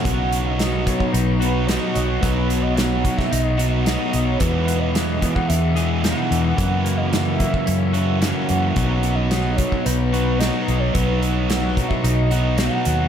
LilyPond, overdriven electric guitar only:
\new Staff \with { instrumentName = "Overdriven electric guitar" } { \time 4/4 \key b \major \tempo 4 = 110 <b, fis b dis' fis'>2~ <b, fis b dis' fis'>8 <b, fis b dis' fis'>8 <b, fis b dis' fis'>4 | <b, fis b dis' fis'>2~ <b, fis b dis' fis'>8 <b, fis b dis' fis'>8 <b, fis b dis' fis'>4 | <e, b, e gis b gis'>2~ <e, b, e gis b gis'>8 <e, b, e gis b gis'>8 <e, b, e gis b gis'>4 | <fis, cis e ais cis' fis'>2~ <fis, cis e ais cis' fis'>8 <fis, cis e ais cis' fis'>8 <fis, cis e ais cis' fis'>4 |
<b, fis b dis' fis'>2~ <b, fis b dis' fis'>8 <b, fis b dis' fis'>8 <b, fis b dis' fis'>4 | <b, fis b dis' fis'>2~ <b, fis b dis' fis'>8 <b, fis b dis' fis'>8 <b, fis b dis' fis'>4 | }